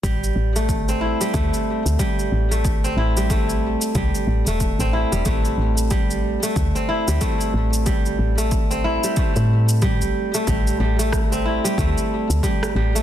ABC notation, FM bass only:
X:1
M:4/4
L:1/16
Q:"Swing 16ths" 1/4=92
K:Am
V:1 name="FM bass" clef=bass
A,,,2 A,,,4- A,,, z D,, z2 D,, z2 A,,,2- | A,,,2 A,,,4- A,,, z C,, z A,,, E,,,2 A,,,2 E,,, | A,,,2 A,,,4- A,,, z D,, z2 D,, z2 A,,,2- | A,,,2 A,,,4- A,,, z2 A,,4 A,,, z2 |
A,,,2 A,,,4- A,,, z D,, z2 D,, z2 A,,,2 |]